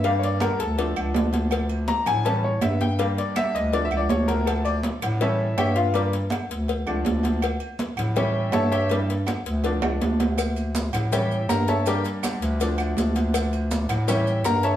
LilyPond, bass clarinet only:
\new Staff \with { instrumentName = "Bass clarinet" } { \clef bass \time 4/4 \key d \minor \tempo 4 = 162 g,4. d,4 cis,8 d,4~ | d,4. a,4. g,4~ | g,8 r4 d,4 cis,8 d,4~ | d,4. a,4. g,4~ |
g,4. d,4 cis,8 d,4~ | d,8 r4 a,4. g,4~ | g,4. d,4 cis,8 d,4~ | d,4. a,4. g,4~ |
g,8 r4 d,4. d,4~ | d,4. a,4. g,4 | }